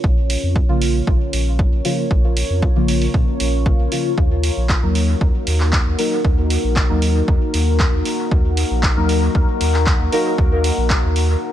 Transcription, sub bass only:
0.04 0.37 A#1 loud
0.43 0.61 F2 medium
0.69 1.01 A#1 loud
1.07 1.17 A#1 medium
1.33 1.66 A#1 loud
1.72 1.81 A#1 medium
2.11 2.43 A#1 loud
2.50 2.68 F2 medium
2.76 3.08 A#1 loud
3.14 3.23 A#2 medium
3.40 3.73 A#1 medium
3.79 3.88 A#1 medium
4.18 4.50 D#2 loud
4.57 4.75 A#1 medium
4.83 5.15 D#2 loud
5.21 5.30 D#2 medium
5.47 5.80 D#2 loud
5.86 5.95 D#2 medium
6.25 6.57 D#2 loud
6.64 6.82 A#1 medium
6.90 7.22 D#2 loud
7.28 7.37 D#2 medium
7.54 7.87 D#2 loud
7.93 8.02 D#2 medium
8.31 8.64 D#2 loud
8.71 8.89 A#1 medium
8.97 9.29 D#2 loud
9.35 9.44 D#2 medium
9.61 9.94 D#2 loud
10.00 10.09 D#2 medium
10.38 10.71 D#2 loud
10.77 10.95 A#1 medium
11.03 11.36 D#2 loud

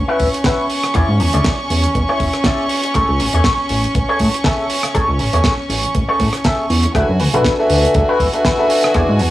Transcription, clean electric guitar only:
0.08 0.27 E4 loud
0.08 0.27 F#4 medium
0.08 0.27 B4 loud
0.45 0.64 E4 medium
0.45 0.64 F#4 medium
0.45 0.64 B4 medium
0.84 muted clean electric guitar stroke soft
0.95 1.09 E4 loud
0.95 1.09 G#4 medium
0.95 1.09 D5 loud
1.20 muted clean electric guitar stroke medium
1.34 1.52 E4 medium
1.34 1.52 G#4 medium
1.34 1.52 D5 loud
1.70 muted clean electric guitar stroke soft
1.95 muted clean electric guitar stroke soft
2.09 2.27 E4 medium
2.09 2.27 G#4 medium
2.09 2.27 C#5 loud
2.45 2.64 E4 medium
2.45 2.65 G#4 medium
2.45 2.65 D5 medium
2.84 muted clean electric guitar stroke soft
2.95 3.09 G#4 loud
2.95 3.09 A4 medium
2.95 3.09 C#5 loud
3.20 muted clean electric guitar stroke medium
3.34 3.52 G#4 medium
3.34 3.52 A4 medium
3.34 3.52 C#5 medium
3.70 muted clean electric guitar stroke soft
3.95 muted clean electric guitar stroke soft
4.09 4.27 G#4 loud
4.09 4.27 A4 medium
4.09 4.27 C#5 loud
4.45 4.64 G#4 medium
4.45 4.64 A4 medium
4.45 4.64 E5 medium
4.83 muted clean electric guitar stroke soft
4.94 5.09 G#4 loud
4.94 5.09 A4 medium
4.94 5.09 C#5 loud
5.20 muted clean electric guitar stroke medium
5.33 5.52 G#4 medium
5.33 5.52 A4 medium
5.33 5.52 C#5 medium
5.70 muted clean electric guitar stroke soft
5.95 muted clean electric guitar stroke soft
6.09 6.27 G#4 medium
6.09 6.27 A4 medium
6.09 6.27 C#5 loud
6.45 6.64 G#4 medium
6.45 6.64 A4 medium
6.45 6.64 E5 medium
6.84 muted clean electric guitar stroke soft
6.95 7.09 E4 medium
6.95 7.09 F#4 loud
6.95 7.09 B4 loud
7.20 muted clean electric guitar stroke medium
7.34 7.52 E4 medium
7.34 7.52 F#4 medium
7.34 7.52 B4 medium
7.70 muted clean electric guitar stroke soft
7.95 muted clean electric guitar stroke soft
8.08 8.27 E4 loud
8.08 8.27 F#4 medium
8.08 8.27 B4 loud
8.45 8.64 E4 medium
8.45 8.64 F#4 medium
8.45 8.64 B4 medium
8.84 muted clean electric guitar stroke soft
8.95 9.09 E4 loud
8.95 9.09 G#4 medium
8.95 9.09 D5 loud
9.20 muted clean electric guitar stroke medium

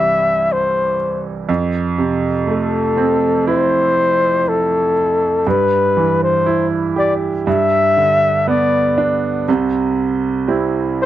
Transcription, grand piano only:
0.00 1.45 C2 medium
0.00 1.50 G2 soft
0.00 0.46 C3 soft
0.00 0.95 E3 soft
0.00 1.44 G3 medium
1.49 5.42 F2 medium
1.98 3.92 C3 soft
2.47 4.42 A3 medium
2.97 4.92 C4 medium
3.47 5.42 E4 medium
5.47 7.43 G2 medium
5.97 7.43 E3 medium
6.46 7.44 E4 medium
6.96 7.45 G4 medium
7.47 9.44 G2 medium
7.97 9.44 D3 soft
8.47 9.45 B3 medium
8.98 9.47 D4 medium
9.48 11.06 C2 medium
9.48 11.06 C3 medium
10.48 11.06 G3 soft
10.48 11.06 C4 soft
10.48 11.06 E4 soft

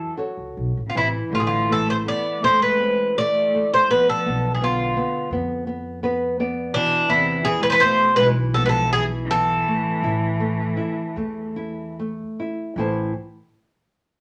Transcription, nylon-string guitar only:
0.00 0.16 E3 medium
0.17 0.80 F#4 soft
0.17 0.79 A4 soft
0.17 0.80 C#5 soft
0.95 3.87 E3 medium
1.33 1.68 A3 medium
1.69 2.05 A3 soft
2.06 2.42 A3 soft
2.43 2.80 A3 medium
2.80 3.17 C4 medium
3.18 3.53 A3 medium
3.55 3.90 A3 soft
3.90 4.25 B3 medium
4.26 4.60 B3 medium
4.62 4.96 B3 medium
4.97 5.31 B3 medium
5.33 5.66 B3 medium
5.67 6.02 B3 medium
6.03 6.38 B3 medium
6.03 6.36 B4 medium
6.40 6.74 B3 medium
6.40 6.72 D5 medium
6.76 7.44 E3 medium
7.10 7.45 B3 medium
7.45 7.81 E3 medium
7.83 8.18 B2 medium
8.20 8.55 E3 medium
8.57 8.92 B3 medium
8.94 9.30 E3 medium
9.31 9.66 B3 soft
9.68 10.39 A3 medium
10.04 10.39 E4 medium
10.40 10.76 A3 medium
10.77 11.15 E4 medium
11.17 11.56 A3 soft
11.56 11.96 E4 medium
11.99 12.37 A3 medium
12.40 12.76 E4 soft
12.78 13.12 A2 soft
12.78 13.12 E3 soft
12.78 13.12 E4 soft
12.78 13.12 A4 soft
12.78 13.12 C5 soft
12.78 13.13 A5 medium

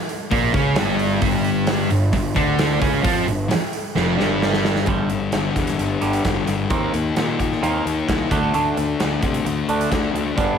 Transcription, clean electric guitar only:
4.88 5.09 G2 medium
4.88 5.09 D3 medium
4.88 5.09 G3 loud
5.10 5.31 G2 medium
5.10 5.31 D3 medium
5.34 5.54 G2 medium
5.34 5.54 D3 medium
5.56 5.76 G2 medium
5.56 5.76 D3 medium
5.78 5.99 G2 medium
5.78 5.99 D3 medium
6.01 6.23 G2 medium
6.01 6.23 D3 medium
6.01 6.23 G3 medium
6.24 6.45 G2 medium
6.24 6.45 D3 medium
6.47 6.68 G2 medium
6.47 6.68 D3 medium
6.70 6.92 D#3 medium
6.70 6.92 A#3 loud
6.70 6.92 C4 loud
6.94 7.14 D#3 medium
6.94 7.14 A#3 medium
7.17 7.37 D#3 medium
7.17 7.37 A#3 medium
7.39 7.60 D#3 medium
7.39 7.60 A#3 medium
7.62 7.83 D#3 medium
7.62 7.84 A#3 loud
7.62 7.84 C4 loud
7.85 8.05 D#3 medium
7.85 8.06 A#3 medium
8.08 8.29 D#3 medium
8.08 8.29 A#3 medium
8.31 8.52 D3 medium
8.31 8.53 A3 medium
8.31 8.53 D4 medium
8.54 8.75 D3 medium
8.54 8.76 A3 loud
8.54 8.76 D4 loud
8.77 8.98 D3 medium
8.77 8.98 A3 medium
9.00 9.20 D3 medium
9.00 9.21 A3 medium
9.23 9.43 D3 medium
9.23 9.43 A3 medium
9.46 9.66 D3 medium
9.46 9.67 A3 medium
9.69 9.90 D3 medium
9.69 9.90 A3 loud
9.69 9.91 D4 loud
9.91 10.12 D3 medium
9.91 10.12 A3 medium
10.14 10.35 D3 medium
10.14 10.35 A3 medium
10.37 10.58 G3 medium
10.37 10.58 B3 loud
10.37 10.58 D4 loud

